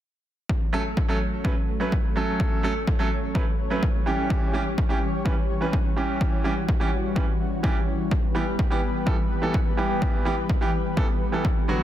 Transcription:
0.49 analog synth pad F#3 A3 C#4 A4 C#5, kick
0.73 grand piano F#3 A3 C#4 A4
0.97 kick
1.08 grand piano F#3 A3 C#4 A4
1.44 grand piano F#3 A3 C#4 B4, kick
1.80 grand piano F#3 A3 C#4 B4
1.92 kick
2.16 grand piano F#3 A3 C#4 A4
2.40 kick
2.63 grand piano F#3 A3 C#4 A4
2.87 kick
2.99 grand piano F#3 A3 C#4 A4
3.35 grand piano F#3 A3 C#4 B4, kick
3.70 grand piano F#3 A3 C#4 B4
3.83 kick
4.06 grand piano E3 G3 C#4 G4
4.30 analog synth pad E3 G3 G4, kick
4.53 grand piano E3 G3 C#4 G4
4.78 kick
4.89 grand piano E3 G3 C#4 G4
5.25 grand piano E3 G3 C#4 B4, kick
5.61 grand piano E3 G3 C#4 B4
5.73 kick
5.96 grand piano E3 G3 C#4 G4
6.21 analog synth pad F#4, kick
6.44 grand piano E3 G3 C#4 G4
6.69 kick
6.80 grand piano E3 G3 C#4 G4
7.16 grand piano E3 G3 C#4 B4, kick
7.63 grand piano E3 G3 C#4 G4, kick
8.11 analog synth pad B3 G4 B4, kick
8.35 grand piano E3 G3 B3 G4
8.59 kick
8.70 grand piano E3 G3 B3 G4
9.06 grand piano E3 G3 B3 A4, kick
9.42 grand piano E3 G3 B3 A4
9.54 kick
9.77 grand piano E3 G3 B3 G4
10.02 kick
10.25 grand piano E3 G3 B3 G4
10.49 kick
10.61 grand piano E3 G3 B3 G4
10.97 grand piano E3 G3 B3 A4, kick
11.32 grand piano E3 G3 B3 A4
11.45 kick
11.68 grand piano D3 F#3 B3 F#4

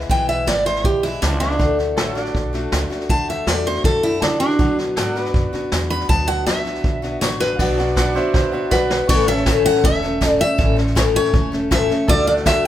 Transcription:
0.01 snare
0.09 upright bass B1, steel-string acoustic guitar E2 B2 E3 G#3 B3 E4 G5, kick, snare
0.29 steel-string acoustic guitar E5, snare
0.47 upright bass G#1, steel-string acoustic guitar E3 G#3 B3 E4 D5, snare, hi-hat pedal
0.65 steel-string acoustic guitar E3 G#3 B3 E4 C5, snare
0.75 snare
0.84 upright bass B1, steel-string acoustic guitar G4, kick, snare
1.03 steel-string acoustic guitar E3 G#3 B3 E4, snare
1.22 upright bass C#2, steel-string acoustic guitar D4, snare, hi-hat pedal
1.40 steel-string acoustic guitar E3 G#3 B3 D4 E4, snare
1.51 snare
1.59 upright bass D2, steel-string acoustic guitar D3 A3 D4 F#4, kick, snare
1.79 snare
1.97 upright bass A1, steel-string acoustic guitar D3 A3 D4 F#4, pedal steel guitar A4 C#5 E5, snare, hi-hat pedal
2.15 steel-string acoustic guitar A3 D4 F#4, pedal steel guitar D5, snare
2.25 pedal steel guitar F#5, snare
2.35 upright bass B1, kick, snare
2.53 steel-string acoustic guitar A3 D4 F#4, snare
2.72 upright bass C#2, snare, hi-hat pedal
2.90 steel-string acoustic guitar A3 D4 F#4, muted upright bass stroke, snare
3.00 snare
3.09 upright bass D2, steel-string acoustic guitar D3 A3 D4 F#4 A5, kick, snare
3.29 steel-string acoustic guitar E5, snare
3.47 upright bass E2, steel-string acoustic guitar D3 A3 D4 F#4 D5, snare, hi-hat pedal
3.65 steel-string acoustic guitar A3 D4 F#4 C5, snare
3.75 snare
3.84 upright bass F#2, steel-string acoustic guitar A4, kick, snare
4.03 steel-string acoustic guitar A3 D4 E4 F#4, snare
4.22 upright bass C#3, steel-string acoustic guitar D4, snare, hi-hat pedal
4.40 steel-string acoustic guitar A3 D4 F#4, snare
4.50 snare
4.59 steel-string acoustic guitar B2 F#3 B3 D4 F#4, upright bass B2, kick, snare
4.78 snare
4.97 upright bass G#2, steel-string acoustic guitar F#3 B3 D4 F#4, pedal steel guitar A4 D5 F#5, snare, hi-hat pedal
5.15 steel-string acoustic guitar B3 D4 F#4, snare
5.23 pedal steel guitar B4, snare
5.34 upright bass F#2, kick, snare
5.53 steel-string acoustic guitar B3 D4 F#4, muted upright bass stroke, snare
5.72 upright bass E2, snare, hi-hat pedal
5.90 steel-string acoustic guitar B3 D4 F#4 B5, snare
6.00 snare
6.09 upright bass D2, steel-string acoustic guitar B2 F#3 B3 D4 F#4 A5, kick, snare
6.28 steel-string acoustic guitar F#5, snare
6.46 upright bass C#2, steel-string acoustic guitar F#3 B3 D4 F#4 E5, snare, hi-hat pedal
6.65 steel-string acoustic guitar B3 D4 F#4, snare
6.75 snare
6.84 upright bass B1, kick, snare
7.02 steel-string acoustic guitar B3 D4 F#4, snare
7.21 upright bass A1, steel-string acoustic guitar C#5, snare, hi-hat pedal
7.40 steel-string acoustic guitar B3 D4 F#4 B4, snare
7.55 violin section F#4, upright piano D5 F5
7.59 upright bass B1, steel-string acoustic guitar B2 F#3 B3 D4 F#4, violin section B3 D4 D5, upright piano F#5, kick, snare, crash
7.78 steel-string acoustic guitar B3 D4 F#4, upright piano D5 F#5, snare
7.87 snare
7.96 steel-string acoustic guitar F#3 B3 D4 F#4, pedal steel guitar B4 D5 F#5, upright piano D5 F#5, kick, snare, hi-hat pedal
8.15 steel-string acoustic guitar B3 D4 F#4, upright piano C5 E5, snare
8.34 upright bass C#2, upright piano C5 E5, kick, snare
8.52 steel-string acoustic guitar B3 D4 F#4, upright piano C5 E5
8.71 upright bass B1, steel-string acoustic guitar F#3 B3 D4 F#4 B4, upright piano D5 F#5, kick, snare, hi-hat pedal
8.90 snare
9.09 upright bass A1, steel-string acoustic guitar A2 E3 A3 C#4 A4 C#5, pedal steel guitar B4 D5 F#5, kick, snare, crash
9.27 steel-string acoustic guitar A3 C#4 A4 E5, pedal steel guitar C#5, snare
9.35 pedal steel guitar A4 E5, snare
9.46 steel-string acoustic guitar A2 E3 A3 C#4 A4, kick, snare, hi-hat pedal
9.65 steel-string acoustic guitar F#5, snare
9.75 snare
9.84 upright bass E1, steel-string acoustic guitar E3 A3 C#4 A4 E5, kick, snare
10.02 steel-string acoustic guitar A3 C#4 A4, snare
10.21 steel-string acoustic guitar A2 E3 A3 C#4 A4, kick, snare, hi-hat pedal
10.39 steel-string acoustic guitar A3 C#4 A4 E5, snare
10.58 upright bass A1, steel-string acoustic guitar A2 E3 A3 C#4 A4, kick, snare
10.77 steel-string acoustic guitar A3 C#4 A4, snare
10.87 snare
10.95 steel-string acoustic guitar A2 E3 A3 C#4 A4 C#5, kick, snare, hi-hat pedal
11.15 steel-string acoustic guitar C#5, snare
11.24 snare
11.33 upright bass E1, steel-string acoustic guitar E3 A3 C#4 A4, kick, snare
11.52 steel-string acoustic guitar A3 C#4 A4, snare
11.71 steel-string acoustic guitar A2 E3 A3 C#4 A4 E5, kick, snare, hi-hat pedal
11.89 steel-string acoustic guitar A3 C#4 A4, snare
12.08 upright bass D2, steel-string acoustic guitar D3 A3 D4 F#4 D5, pedal steel guitar A4 D5 E5, kick, snare
12.26 steel-string acoustic guitar A3 D4 F#4 D5, snare
12.35 pedal steel guitar F#5, snare
12.45 steel-string acoustic guitar D3 A3 D4 F#4 E5, kick, snare, hi-hat pedal

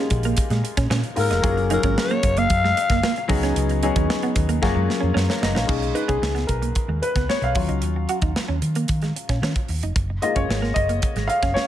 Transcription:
Already playing: grand piano G#3 A#3 D#4 F4 G4 G#4
0.10 fingered electric bass A#1, muted clean electric guitar stroke, kick, closed hi-hat
0.23 clean electric guitar A#3, closed hi-hat
0.37 muted fingered electric bass stroke, kick, closed hi-hat
0.50 fingered electric bass A#2, clean electric guitar G#3, snare, closed hi-hat
0.64 muted clean electric guitar stroke, closed hi-hat
0.77 fingered electric bass A#2, clean electric guitar C#4, kick, snare, closed hi-hat
0.90 fingered electric bass A#2, clean electric guitar C#4, snare
1.03 closed hi-hat
1.16 fingered electric bass G#2, grand piano G#3 A#3 D#4 F4 A#4, alto saxophone A#4, muted clean electric guitar stroke, open hi-hat
1.30 fingered electric bass F1, clean electric guitar D#4, snare, closed hi-hat
1.41 fingered electric bass F#1, grand piano F#3 A#3 C#4 F4 G#4, kick, closed hi-hat
1.57 muted clean electric guitar stroke, closed hi-hat
1.69 grand piano F#3 A#3 C#4 F4 G#4, clean electric guitar D#4, closed hi-hat
1.73 alto saxophone A#4
1.83 fingered electric bass G#1, clean electric guitar C#4, kick, closed hi-hat
1.98 alto saxophone C#5, snare
2.10 clean electric guitar A#3, closed hi-hat
2.23 fingered electric bass F#1, muted clean electric guitar stroke, kick, closed hi-hat
2.37 clean electric guitar A#3, alto saxophone F5, closed hi-hat
2.50 fingered electric bass F#2, kick, closed hi-hat
2.64 clean electric guitar G#3, snare
2.77 muted clean electric guitar stroke, closed hi-hat
2.90 fingered electric bass F#1, clean electric guitar A#3, kick, snare, closed hi-hat
3.03 clean electric guitar A#3, snare
3.16 muted clean electric guitar stroke, closed hi-hat
3.28 fingered electric bass C#2, grand piano F#3 B3 C#4 D#4 G#4, kick, open hi-hat
3.43 clean electric guitar C#4, snare, closed hi-hat
3.56 fingered electric bass C#2, closed hi-hat
3.69 muted clean electric guitar stroke, closed hi-hat
3.83 grand piano F#3 B3 C#4 D#4 G#4, clean electric guitar D#4, closed hi-hat
3.96 fingered electric bass D#2, clean electric guitar C#4, kick, closed hi-hat
4.10 snare
4.23 clean electric guitar B3, closed hi-hat
4.36 fingered electric bass D#2, muted clean electric guitar stroke, kick, closed hi-hat
4.49 clean electric guitar A#3, closed hi-hat
4.62 fingered electric bass F#1, grand piano F#3 A#3 C#4 F4 G#4, kick, snare
4.75 fingered electric bass F#2, clean electric guitar G#3
4.88 muted clean electric guitar stroke, snare
5.00 fingered electric bass F2, clean electric guitar C#4
5.14 fingered electric bass F#2, clean electric guitar C#4, snare
5.29 grand piano A#4 C#5, snare
5.41 fingered electric bass F#1, grand piano D#5, muted clean electric guitar stroke, snare
5.55 fingered electric bass A#1, clean electric guitar D#4, grand piano C#5 F5, snare
5.67 fingered electric bass B1, grand piano G#3 C#4 D#4, kick, crash
5.82 muted clean electric guitar stroke, closed hi-hat
5.95 clean electric guitar D#4, grand piano B4, closed hi-hat
6.08 fingered electric bass B1, clean electric guitar C#4, grand piano G#4, kick, closed hi-hat
6.22 fingered electric bass C#2, snare
6.35 clean electric guitar B3, snare, closed hi-hat
6.47 fingered electric bass B1, grand piano A#4, muted clean electric guitar stroke, kick, closed hi-hat
6.62 clean electric guitar A#3, closed hi-hat
6.75 kick, closed hi-hat
6.88 fingered electric bass D#2, clean electric guitar G#3
7.02 grand piano B4, muted clean electric guitar stroke, closed hi-hat
7.15 fingered electric bass C#2, clean electric guitar B3, kick, snare, closed hi-hat
7.29 clean electric guitar B3, grand piano C#5, snare
7.42 fingered electric bass B1, grand piano F5, muted clean electric guitar stroke, closed hi-hat
7.55 fingered electric bass D#2, grand piano F#3 C#4 F4, kick, open hi-hat
7.69 fingered electric bass C#2, clean electric guitar D#4, closed hi-hat
7.82 fingered electric bass D#2, closed hi-hat
7.96 muted clean electric guitar stroke
8.09 clean electric guitar F#4, closed hi-hat
8.21 fingered electric bass D#2, clean electric guitar D#4, kick, closed hi-hat
8.36 snare
8.48 fingered electric bass D#2, clean electric guitar C#4
8.62 fingered electric bass D#3, muted clean electric guitar stroke, closed hi-hat
8.75 clean electric guitar A#3, closed hi-hat
8.88 fingered electric bass D#3, kick, closed hi-hat
9.02 clean electric guitar G#3, snare, closed hi-hat
9.16 muted clean electric guitar stroke, closed hi-hat
9.29 fingered electric bass A#2, clean electric guitar C#4, kick, snare, closed hi-hat
9.42 fingered electric bass D#3, clean electric guitar C#4, snare
9.56 kick, closed hi-hat
9.68 fingered electric bass D#2, muted clean electric guitar stroke, open hi-hat
9.83 fingered electric bass F1, clean electric guitar D#4, closed hi-hat
9.96 fingered electric bass F#1, kick, closed hi-hat
10.10 muted clean electric guitar stroke
10.22 grand piano G#3 A#3 F4 D#5, clean electric guitar D#4, closed hi-hat
10.36 fingered electric bass F#1, clean electric guitar C#4, grand piano C#5, kick, closed hi-hat
10.49 fingered electric bass G#1, snare
10.62 clean electric guitar A#3, snare
10.74 fingered electric bass F#1, grand piano D#5, muted clean electric guitar stroke, kick, closed hi-hat
10.89 clean electric guitar A#3, closed hi-hat
11.02 kick, closed hi-hat
11.16 fingered electric bass G#1, clean electric guitar G#3, snare, closed hi-hat
11.27 grand piano F5, muted clean electric guitar stroke, closed hi-hat
11.42 fingered electric bass F#1, clean electric guitar C#4, kick, snare, closed hi-hat
11.54 clean electric guitar C#4, grand piano C#5, snare

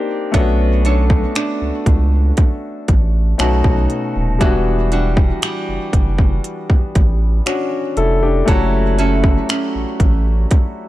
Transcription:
Already playing: grand piano A#3 D4 D#4 G4, nylon-string guitar C4
0.32 sub bass B1, grand piano A3 C#4 D4, nylon-string guitar B3 C#5, kick, closed hi-hat
0.37 grand piano F#4
0.85 nylon-string guitar D4 A4 C#5, closed hi-hat
1.10 kick
1.36 nylon-string guitar D4, finger snap, closed hi-hat
1.62 sub bass C#2
1.86 sub bass C#2, kick, closed hi-hat
2.37 kick, closed hi-hat
2.88 sub bass A1, kick, closed hi-hat
3.38 sub bass B1, nylon-string guitar B2, grand piano A3 C#4 D#4 F#4, finger snap, closed hi-hat
3.64 sub bass B1, kick
3.90 closed hi-hat
4.16 sub bass D#1
4.39 sub bass E1, nylon-string guitar E3 F#4, grand piano G3 B3 D4, kick, closed hi-hat
4.44 grand piano F#4
4.92 nylon-string guitar G3 D4 F#4, closed hi-hat
5.17 kick
5.42 nylon-string guitar G3, finger snap, closed hi-hat
5.69 sub bass F#1
5.93 sub bass F#1, kick, closed hi-hat
6.18 kick
6.44 closed hi-hat
6.70 kick
6.95 sub bass A1, kick, closed hi-hat
7.46 grand piano C#4 F#4, nylon-string guitar D4, finger snap, closed hi-hat
7.97 sub bass F1, grand piano E4 A4, closed hi-hat
8.22 grand piano D4 G4
8.45 sub bass F#1, nylon-string guitar F#3 A4, grand piano A3 C#4 E4, kick, closed hi-hat
8.51 grand piano F#4
8.98 nylon-string guitar C#4 E4 A4, closed hi-hat
9.24 kick
9.49 nylon-string guitar C#4, finger snap, closed hi-hat
9.75 sub bass A1
10.00 sub bass A1, kick, closed hi-hat
10.51 kick, closed hi-hat

